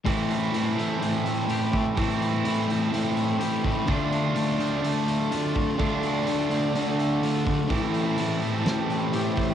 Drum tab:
HH |oooooooo|oooooooo|oooooooo|oooooooo|
SD |--------|--------|--------|--------|
BD |o------o|o------o|o------o|o------o|

HH |oooooooo|
SD |----o---|
BD |o------o|